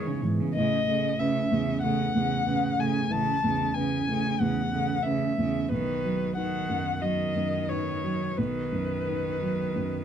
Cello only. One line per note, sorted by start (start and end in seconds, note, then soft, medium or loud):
0.07 0.25 C#3 soft
0.24 0.42 G#2 soft
0.40 0.56 C#3 soft
0.56 0.87 C#3 soft
0.88 1.19 C#3 soft
1.20 1.51 C#3 soft
1.51 1.83 C#3 soft
1.83 2.14 C#3 soft
2.15 2.46 C#3 soft
2.47 2.77 C#3 soft
2.78 3.10 C#3 soft
3.12 3.44 C#3 soft
3.44 3.76 C#3 soft
3.76 4.08 C#3 soft
4.09 4.40 C#3 soft
4.41 4.72 C#3 soft
4.72 5.04 C#3 soft
5.05 5.37 C#3 soft
5.40 5.71 C#3 soft
5.72 6.34 D#3 soft
6.39 7.02 D#3 soft
7.04 8.36 D#3 soft
8.39 10.04 D#3 soft